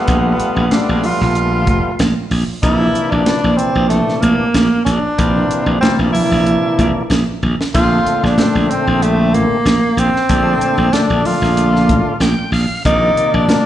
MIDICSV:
0, 0, Header, 1, 6, 480
1, 0, Start_track
1, 0, Key_signature, -2, "major"
1, 0, Tempo, 638298
1, 64, Time_signature, 4, 2, 24, 8
1, 10271, End_track
2, 0, Start_track
2, 0, Title_t, "Tenor saxophone"
2, 0, Program_c, 0, 66
2, 0, Note_on_c, 0, 59, 77
2, 551, Note_on_c, 0, 62, 80
2, 562, Note_off_c, 0, 59, 0
2, 789, Note_on_c, 0, 65, 86
2, 801, Note_off_c, 0, 62, 0
2, 1504, Note_off_c, 0, 65, 0
2, 1975, Note_on_c, 0, 64, 94
2, 2338, Note_on_c, 0, 62, 92
2, 2349, Note_off_c, 0, 64, 0
2, 2687, Note_on_c, 0, 60, 83
2, 2699, Note_off_c, 0, 62, 0
2, 2921, Note_off_c, 0, 60, 0
2, 2926, Note_on_c, 0, 57, 80
2, 3169, Note_on_c, 0, 58, 84
2, 3180, Note_off_c, 0, 57, 0
2, 3642, Note_off_c, 0, 58, 0
2, 3646, Note_on_c, 0, 62, 81
2, 4343, Note_off_c, 0, 62, 0
2, 4367, Note_on_c, 0, 60, 82
2, 4478, Note_off_c, 0, 60, 0
2, 4610, Note_on_c, 0, 64, 82
2, 5305, Note_off_c, 0, 64, 0
2, 5823, Note_on_c, 0, 65, 100
2, 6202, Note_on_c, 0, 62, 84
2, 6213, Note_off_c, 0, 65, 0
2, 6544, Note_on_c, 0, 60, 84
2, 6555, Note_off_c, 0, 62, 0
2, 6788, Note_on_c, 0, 57, 87
2, 6799, Note_off_c, 0, 60, 0
2, 7027, Note_on_c, 0, 58, 89
2, 7038, Note_off_c, 0, 57, 0
2, 7513, Note_on_c, 0, 60, 82
2, 7524, Note_off_c, 0, 58, 0
2, 8224, Note_on_c, 0, 62, 91
2, 8236, Note_off_c, 0, 60, 0
2, 8468, Note_on_c, 0, 65, 84
2, 8479, Note_off_c, 0, 62, 0
2, 9187, Note_off_c, 0, 65, 0
2, 9670, Note_on_c, 0, 63, 100
2, 10033, Note_on_c, 0, 62, 88
2, 10045, Note_off_c, 0, 63, 0
2, 10271, Note_off_c, 0, 62, 0
2, 10271, End_track
3, 0, Start_track
3, 0, Title_t, "Tonewheel organ"
3, 0, Program_c, 1, 16
3, 0, Note_on_c, 1, 55, 60
3, 0, Note_on_c, 1, 57, 59
3, 0, Note_on_c, 1, 59, 68
3, 0, Note_on_c, 1, 65, 77
3, 496, Note_off_c, 1, 59, 0
3, 497, Note_off_c, 1, 55, 0
3, 497, Note_off_c, 1, 57, 0
3, 497, Note_off_c, 1, 65, 0
3, 535, Note_on_c, 1, 55, 53
3, 535, Note_on_c, 1, 57, 55
3, 535, Note_on_c, 1, 59, 58
3, 538, Note_on_c, 1, 65, 68
3, 1438, Note_off_c, 1, 59, 0
3, 1439, Note_off_c, 1, 55, 0
3, 1439, Note_off_c, 1, 57, 0
3, 1440, Note_off_c, 1, 65, 0
3, 1977, Note_on_c, 1, 52, 61
3, 1979, Note_on_c, 1, 48, 62
3, 1980, Note_on_c, 1, 58, 60
3, 1981, Note_on_c, 1, 62, 67
3, 2429, Note_off_c, 1, 52, 0
3, 2430, Note_off_c, 1, 48, 0
3, 2431, Note_off_c, 1, 58, 0
3, 2431, Note_off_c, 1, 62, 0
3, 2459, Note_on_c, 1, 48, 59
3, 2460, Note_on_c, 1, 46, 57
3, 2462, Note_on_c, 1, 52, 53
3, 2463, Note_on_c, 1, 62, 64
3, 3361, Note_off_c, 1, 48, 0
3, 3362, Note_off_c, 1, 46, 0
3, 3362, Note_off_c, 1, 52, 0
3, 3363, Note_off_c, 1, 62, 0
3, 3897, Note_on_c, 1, 48, 65
3, 3898, Note_on_c, 1, 52, 61
3, 3898, Note_on_c, 1, 60, 70
3, 3899, Note_on_c, 1, 58, 56
3, 4349, Note_off_c, 1, 48, 0
3, 4350, Note_off_c, 1, 52, 0
3, 4350, Note_off_c, 1, 58, 0
3, 4350, Note_off_c, 1, 60, 0
3, 4381, Note_on_c, 1, 48, 61
3, 4383, Note_on_c, 1, 52, 56
3, 4383, Note_on_c, 1, 58, 56
3, 4385, Note_on_c, 1, 62, 74
3, 5282, Note_off_c, 1, 48, 0
3, 5283, Note_off_c, 1, 52, 0
3, 5284, Note_off_c, 1, 58, 0
3, 5285, Note_off_c, 1, 62, 0
3, 5821, Note_on_c, 1, 46, 65
3, 5822, Note_on_c, 1, 50, 57
3, 5822, Note_on_c, 1, 57, 55
3, 5825, Note_on_c, 1, 60, 73
3, 6272, Note_off_c, 1, 46, 0
3, 6272, Note_off_c, 1, 50, 0
3, 6272, Note_off_c, 1, 57, 0
3, 6273, Note_off_c, 1, 60, 0
3, 6302, Note_on_c, 1, 50, 59
3, 6302, Note_on_c, 1, 57, 51
3, 6304, Note_on_c, 1, 46, 61
3, 6304, Note_on_c, 1, 60, 66
3, 7204, Note_off_c, 1, 50, 0
3, 7204, Note_off_c, 1, 57, 0
3, 7205, Note_off_c, 1, 46, 0
3, 7205, Note_off_c, 1, 60, 0
3, 7740, Note_on_c, 1, 46, 67
3, 7740, Note_on_c, 1, 50, 59
3, 7740, Note_on_c, 1, 57, 59
3, 7741, Note_on_c, 1, 62, 72
3, 8192, Note_off_c, 1, 46, 0
3, 8192, Note_off_c, 1, 50, 0
3, 8192, Note_off_c, 1, 57, 0
3, 8193, Note_off_c, 1, 62, 0
3, 8226, Note_on_c, 1, 46, 58
3, 8226, Note_on_c, 1, 50, 62
3, 8227, Note_on_c, 1, 57, 52
3, 8228, Note_on_c, 1, 62, 70
3, 9128, Note_off_c, 1, 46, 0
3, 9128, Note_off_c, 1, 50, 0
3, 9129, Note_off_c, 1, 57, 0
3, 9129, Note_off_c, 1, 62, 0
3, 9181, Note_on_c, 1, 79, 58
3, 9407, Note_off_c, 1, 79, 0
3, 9422, Note_on_c, 1, 77, 60
3, 9647, Note_off_c, 1, 77, 0
3, 9664, Note_on_c, 1, 48, 67
3, 9666, Note_on_c, 1, 51, 58
3, 9666, Note_on_c, 1, 58, 64
3, 9666, Note_on_c, 1, 74, 72
3, 10118, Note_off_c, 1, 48, 0
3, 10119, Note_off_c, 1, 51, 0
3, 10119, Note_off_c, 1, 58, 0
3, 10119, Note_off_c, 1, 74, 0
3, 10144, Note_on_c, 1, 48, 65
3, 10145, Note_on_c, 1, 58, 58
3, 10147, Note_on_c, 1, 51, 60
3, 10147, Note_on_c, 1, 62, 69
3, 10271, Note_off_c, 1, 48, 0
3, 10271, Note_off_c, 1, 51, 0
3, 10271, Note_off_c, 1, 58, 0
3, 10271, Note_off_c, 1, 62, 0
3, 10271, End_track
4, 0, Start_track
4, 0, Title_t, "Slap bass"
4, 0, Program_c, 2, 36
4, 63, Note_on_c, 2, 34, 88
4, 243, Note_off_c, 2, 34, 0
4, 424, Note_on_c, 2, 34, 78
4, 510, Note_off_c, 2, 34, 0
4, 669, Note_on_c, 2, 34, 70
4, 753, Note_off_c, 2, 34, 0
4, 910, Note_on_c, 2, 34, 73
4, 1259, Note_off_c, 2, 34, 0
4, 1259, Note_on_c, 2, 29, 69
4, 1356, Note_off_c, 2, 29, 0
4, 1500, Note_on_c, 2, 34, 79
4, 1597, Note_off_c, 2, 34, 0
4, 1737, Note_on_c, 2, 34, 75
4, 1835, Note_off_c, 2, 34, 0
4, 1980, Note_on_c, 2, 34, 90
4, 2160, Note_off_c, 2, 34, 0
4, 2346, Note_on_c, 2, 34, 81
4, 2430, Note_off_c, 2, 34, 0
4, 2587, Note_on_c, 2, 34, 70
4, 2671, Note_off_c, 2, 34, 0
4, 2822, Note_on_c, 2, 34, 70
4, 3005, Note_off_c, 2, 34, 0
4, 3178, Note_on_c, 2, 34, 74
4, 3275, Note_off_c, 2, 34, 0
4, 3415, Note_on_c, 2, 34, 77
4, 3514, Note_off_c, 2, 34, 0
4, 3655, Note_on_c, 2, 34, 80
4, 3754, Note_off_c, 2, 34, 0
4, 3902, Note_on_c, 2, 34, 87
4, 4082, Note_off_c, 2, 34, 0
4, 4257, Note_on_c, 2, 34, 76
4, 4345, Note_off_c, 2, 34, 0
4, 4503, Note_on_c, 2, 34, 74
4, 4589, Note_off_c, 2, 34, 0
4, 4748, Note_on_c, 2, 34, 67
4, 4929, Note_off_c, 2, 34, 0
4, 5106, Note_on_c, 2, 34, 74
4, 5201, Note_off_c, 2, 34, 0
4, 5339, Note_on_c, 2, 34, 76
4, 5437, Note_off_c, 2, 34, 0
4, 5584, Note_on_c, 2, 34, 71
4, 5679, Note_off_c, 2, 34, 0
4, 5827, Note_on_c, 2, 34, 86
4, 6005, Note_off_c, 2, 34, 0
4, 6192, Note_on_c, 2, 34, 77
4, 6275, Note_off_c, 2, 34, 0
4, 6430, Note_on_c, 2, 34, 75
4, 6514, Note_off_c, 2, 34, 0
4, 6672, Note_on_c, 2, 34, 72
4, 7021, Note_off_c, 2, 34, 0
4, 7021, Note_on_c, 2, 33, 82
4, 7118, Note_off_c, 2, 33, 0
4, 7259, Note_on_c, 2, 34, 78
4, 7357, Note_off_c, 2, 34, 0
4, 7497, Note_on_c, 2, 34, 77
4, 7596, Note_off_c, 2, 34, 0
4, 7743, Note_on_c, 2, 34, 91
4, 7924, Note_off_c, 2, 34, 0
4, 8103, Note_on_c, 2, 34, 78
4, 8190, Note_off_c, 2, 34, 0
4, 8347, Note_on_c, 2, 34, 71
4, 8432, Note_off_c, 2, 34, 0
4, 8586, Note_on_c, 2, 34, 80
4, 8945, Note_off_c, 2, 34, 0
4, 8945, Note_on_c, 2, 33, 83
4, 9042, Note_off_c, 2, 33, 0
4, 9175, Note_on_c, 2, 34, 84
4, 9276, Note_off_c, 2, 34, 0
4, 9414, Note_on_c, 2, 34, 76
4, 9515, Note_off_c, 2, 34, 0
4, 9667, Note_on_c, 2, 34, 88
4, 9848, Note_off_c, 2, 34, 0
4, 10031, Note_on_c, 2, 34, 83
4, 10117, Note_off_c, 2, 34, 0
4, 10271, End_track
5, 0, Start_track
5, 0, Title_t, "Muted slap bass strokes"
5, 301, Note_on_c, 9, 29, 30
5, 376, Note_off_c, 9, 29, 0
5, 1386, Note_on_c, 9, 29, 32
5, 1461, Note_off_c, 9, 29, 0
5, 1865, Note_on_c, 9, 29, 30
5, 1940, Note_off_c, 9, 29, 0
5, 2222, Note_on_c, 9, 29, 30
5, 2298, Note_off_c, 9, 29, 0
5, 3305, Note_on_c, 9, 29, 32
5, 3380, Note_off_c, 9, 29, 0
5, 3784, Note_on_c, 9, 29, 27
5, 3859, Note_off_c, 9, 29, 0
5, 4134, Note_on_c, 9, 29, 34
5, 4209, Note_off_c, 9, 29, 0
5, 5711, Note_on_c, 9, 29, 29
5, 5786, Note_off_c, 9, 29, 0
5, 6064, Note_on_c, 9, 29, 31
5, 6139, Note_off_c, 9, 29, 0
5, 7147, Note_on_c, 9, 29, 29
5, 7222, Note_off_c, 9, 29, 0
5, 7625, Note_on_c, 9, 29, 30
5, 7700, Note_off_c, 9, 29, 0
5, 7978, Note_on_c, 9, 29, 31
5, 8053, Note_off_c, 9, 29, 0
5, 9071, Note_on_c, 9, 29, 32
5, 9146, Note_off_c, 9, 29, 0
5, 9546, Note_on_c, 9, 29, 30
5, 9622, Note_off_c, 9, 29, 0
5, 9898, Note_on_c, 9, 29, 36
5, 9973, Note_off_c, 9, 29, 0
5, 10271, End_track
6, 0, Start_track
6, 0, Title_t, "Drums"
6, 57, Note_on_c, 9, 42, 71
6, 61, Note_on_c, 9, 36, 95
6, 132, Note_off_c, 9, 42, 0
6, 136, Note_off_c, 9, 36, 0
6, 298, Note_on_c, 9, 42, 57
6, 373, Note_off_c, 9, 42, 0
6, 537, Note_on_c, 9, 42, 67
6, 539, Note_on_c, 9, 63, 75
6, 543, Note_on_c, 9, 38, 90
6, 612, Note_off_c, 9, 42, 0
6, 615, Note_off_c, 9, 63, 0
6, 618, Note_off_c, 9, 38, 0
6, 779, Note_on_c, 9, 46, 63
6, 780, Note_on_c, 9, 62, 25
6, 780, Note_on_c, 9, 64, 56
6, 854, Note_off_c, 9, 46, 0
6, 855, Note_off_c, 9, 62, 0
6, 855, Note_off_c, 9, 64, 0
6, 915, Note_on_c, 9, 38, 30
6, 991, Note_off_c, 9, 38, 0
6, 1018, Note_on_c, 9, 42, 66
6, 1019, Note_on_c, 9, 62, 23
6, 1093, Note_off_c, 9, 42, 0
6, 1094, Note_off_c, 9, 62, 0
6, 1256, Note_on_c, 9, 42, 51
6, 1259, Note_on_c, 9, 36, 75
6, 1260, Note_on_c, 9, 62, 24
6, 1260, Note_on_c, 9, 63, 53
6, 1331, Note_off_c, 9, 42, 0
6, 1334, Note_off_c, 9, 36, 0
6, 1335, Note_off_c, 9, 62, 0
6, 1335, Note_off_c, 9, 63, 0
6, 1498, Note_on_c, 9, 42, 66
6, 1499, Note_on_c, 9, 63, 61
6, 1504, Note_on_c, 9, 38, 100
6, 1573, Note_off_c, 9, 42, 0
6, 1575, Note_off_c, 9, 63, 0
6, 1579, Note_off_c, 9, 38, 0
6, 1737, Note_on_c, 9, 46, 74
6, 1812, Note_off_c, 9, 46, 0
6, 1978, Note_on_c, 9, 36, 96
6, 1978, Note_on_c, 9, 42, 71
6, 1979, Note_on_c, 9, 62, 26
6, 2053, Note_off_c, 9, 36, 0
6, 2053, Note_off_c, 9, 42, 0
6, 2054, Note_off_c, 9, 62, 0
6, 2220, Note_on_c, 9, 42, 50
6, 2295, Note_off_c, 9, 42, 0
6, 2454, Note_on_c, 9, 63, 84
6, 2456, Note_on_c, 9, 42, 66
6, 2462, Note_on_c, 9, 38, 88
6, 2529, Note_off_c, 9, 63, 0
6, 2531, Note_off_c, 9, 42, 0
6, 2537, Note_off_c, 9, 38, 0
6, 2697, Note_on_c, 9, 42, 55
6, 2700, Note_on_c, 9, 62, 27
6, 2772, Note_off_c, 9, 42, 0
6, 2775, Note_off_c, 9, 62, 0
6, 2935, Note_on_c, 9, 42, 68
6, 2937, Note_on_c, 9, 62, 25
6, 3010, Note_off_c, 9, 42, 0
6, 3012, Note_off_c, 9, 62, 0
6, 3071, Note_on_c, 9, 38, 30
6, 3146, Note_off_c, 9, 38, 0
6, 3177, Note_on_c, 9, 42, 52
6, 3179, Note_on_c, 9, 62, 24
6, 3179, Note_on_c, 9, 63, 59
6, 3252, Note_off_c, 9, 42, 0
6, 3254, Note_off_c, 9, 62, 0
6, 3254, Note_off_c, 9, 63, 0
6, 3417, Note_on_c, 9, 42, 74
6, 3423, Note_on_c, 9, 38, 104
6, 3424, Note_on_c, 9, 63, 63
6, 3492, Note_off_c, 9, 42, 0
6, 3498, Note_off_c, 9, 38, 0
6, 3499, Note_off_c, 9, 63, 0
6, 3659, Note_on_c, 9, 42, 59
6, 3665, Note_on_c, 9, 38, 30
6, 3734, Note_off_c, 9, 42, 0
6, 3740, Note_off_c, 9, 38, 0
6, 3900, Note_on_c, 9, 42, 76
6, 3902, Note_on_c, 9, 36, 96
6, 3975, Note_off_c, 9, 42, 0
6, 3977, Note_off_c, 9, 36, 0
6, 4141, Note_on_c, 9, 42, 56
6, 4217, Note_off_c, 9, 42, 0
6, 4382, Note_on_c, 9, 42, 64
6, 4382, Note_on_c, 9, 63, 86
6, 4388, Note_on_c, 9, 38, 87
6, 4457, Note_off_c, 9, 42, 0
6, 4457, Note_off_c, 9, 63, 0
6, 4463, Note_off_c, 9, 38, 0
6, 4622, Note_on_c, 9, 46, 62
6, 4625, Note_on_c, 9, 62, 27
6, 4625, Note_on_c, 9, 64, 62
6, 4697, Note_off_c, 9, 46, 0
6, 4700, Note_off_c, 9, 62, 0
6, 4700, Note_off_c, 9, 64, 0
6, 4862, Note_on_c, 9, 42, 71
6, 4863, Note_on_c, 9, 62, 26
6, 4938, Note_off_c, 9, 42, 0
6, 4938, Note_off_c, 9, 62, 0
6, 5105, Note_on_c, 9, 36, 72
6, 5105, Note_on_c, 9, 42, 52
6, 5106, Note_on_c, 9, 62, 24
6, 5106, Note_on_c, 9, 63, 64
6, 5180, Note_off_c, 9, 36, 0
6, 5181, Note_off_c, 9, 42, 0
6, 5182, Note_off_c, 9, 62, 0
6, 5182, Note_off_c, 9, 63, 0
6, 5339, Note_on_c, 9, 63, 68
6, 5347, Note_on_c, 9, 42, 68
6, 5353, Note_on_c, 9, 38, 92
6, 5414, Note_off_c, 9, 63, 0
6, 5422, Note_off_c, 9, 42, 0
6, 5428, Note_off_c, 9, 38, 0
6, 5588, Note_on_c, 9, 48, 47
6, 5664, Note_off_c, 9, 48, 0
6, 5720, Note_on_c, 9, 38, 71
6, 5796, Note_off_c, 9, 38, 0
6, 5820, Note_on_c, 9, 62, 25
6, 5825, Note_on_c, 9, 42, 69
6, 5825, Note_on_c, 9, 49, 76
6, 5826, Note_on_c, 9, 36, 98
6, 5895, Note_off_c, 9, 62, 0
6, 5900, Note_off_c, 9, 42, 0
6, 5900, Note_off_c, 9, 49, 0
6, 5901, Note_off_c, 9, 36, 0
6, 6065, Note_on_c, 9, 42, 50
6, 6140, Note_off_c, 9, 42, 0
6, 6204, Note_on_c, 9, 38, 31
6, 6279, Note_off_c, 9, 38, 0
6, 6300, Note_on_c, 9, 63, 86
6, 6305, Note_on_c, 9, 42, 66
6, 6311, Note_on_c, 9, 38, 91
6, 6375, Note_off_c, 9, 63, 0
6, 6381, Note_off_c, 9, 42, 0
6, 6387, Note_off_c, 9, 38, 0
6, 6541, Note_on_c, 9, 62, 26
6, 6548, Note_on_c, 9, 42, 52
6, 6617, Note_off_c, 9, 62, 0
6, 6623, Note_off_c, 9, 42, 0
6, 6786, Note_on_c, 9, 42, 71
6, 6861, Note_off_c, 9, 42, 0
6, 7025, Note_on_c, 9, 62, 23
6, 7025, Note_on_c, 9, 63, 61
6, 7027, Note_on_c, 9, 42, 54
6, 7101, Note_off_c, 9, 62, 0
6, 7101, Note_off_c, 9, 63, 0
6, 7102, Note_off_c, 9, 42, 0
6, 7266, Note_on_c, 9, 63, 61
6, 7267, Note_on_c, 9, 42, 76
6, 7273, Note_on_c, 9, 38, 100
6, 7341, Note_off_c, 9, 63, 0
6, 7342, Note_off_c, 9, 42, 0
6, 7348, Note_off_c, 9, 38, 0
6, 7506, Note_on_c, 9, 42, 58
6, 7581, Note_off_c, 9, 42, 0
6, 7640, Note_on_c, 9, 38, 31
6, 7715, Note_off_c, 9, 38, 0
6, 7740, Note_on_c, 9, 42, 77
6, 7743, Note_on_c, 9, 36, 94
6, 7744, Note_on_c, 9, 62, 21
6, 7815, Note_off_c, 9, 42, 0
6, 7818, Note_off_c, 9, 36, 0
6, 7819, Note_off_c, 9, 62, 0
6, 7981, Note_on_c, 9, 42, 55
6, 8057, Note_off_c, 9, 42, 0
6, 8220, Note_on_c, 9, 42, 76
6, 8221, Note_on_c, 9, 63, 72
6, 8226, Note_on_c, 9, 38, 87
6, 8295, Note_off_c, 9, 42, 0
6, 8297, Note_off_c, 9, 63, 0
6, 8301, Note_off_c, 9, 38, 0
6, 8462, Note_on_c, 9, 46, 58
6, 8462, Note_on_c, 9, 62, 24
6, 8462, Note_on_c, 9, 64, 55
6, 8537, Note_off_c, 9, 62, 0
6, 8537, Note_off_c, 9, 64, 0
6, 8538, Note_off_c, 9, 46, 0
6, 8600, Note_on_c, 9, 38, 32
6, 8676, Note_off_c, 9, 38, 0
6, 8699, Note_on_c, 9, 62, 24
6, 8702, Note_on_c, 9, 42, 73
6, 8774, Note_off_c, 9, 62, 0
6, 8778, Note_off_c, 9, 42, 0
6, 8840, Note_on_c, 9, 38, 30
6, 8915, Note_off_c, 9, 38, 0
6, 8938, Note_on_c, 9, 62, 23
6, 8938, Note_on_c, 9, 63, 54
6, 8943, Note_on_c, 9, 42, 58
6, 8944, Note_on_c, 9, 36, 71
6, 9013, Note_off_c, 9, 62, 0
6, 9013, Note_off_c, 9, 63, 0
6, 9018, Note_off_c, 9, 42, 0
6, 9019, Note_off_c, 9, 36, 0
6, 9178, Note_on_c, 9, 63, 66
6, 9183, Note_on_c, 9, 42, 78
6, 9189, Note_on_c, 9, 38, 96
6, 9253, Note_off_c, 9, 63, 0
6, 9258, Note_off_c, 9, 42, 0
6, 9264, Note_off_c, 9, 38, 0
6, 9426, Note_on_c, 9, 46, 70
6, 9501, Note_off_c, 9, 46, 0
6, 9662, Note_on_c, 9, 62, 25
6, 9665, Note_on_c, 9, 36, 97
6, 9665, Note_on_c, 9, 42, 72
6, 9737, Note_off_c, 9, 62, 0
6, 9740, Note_off_c, 9, 42, 0
6, 9741, Note_off_c, 9, 36, 0
6, 9906, Note_on_c, 9, 42, 50
6, 9981, Note_off_c, 9, 42, 0
6, 10140, Note_on_c, 9, 63, 83
6, 10145, Note_on_c, 9, 42, 69
6, 10151, Note_on_c, 9, 38, 98
6, 10216, Note_off_c, 9, 63, 0
6, 10220, Note_off_c, 9, 42, 0
6, 10226, Note_off_c, 9, 38, 0
6, 10271, End_track
0, 0, End_of_file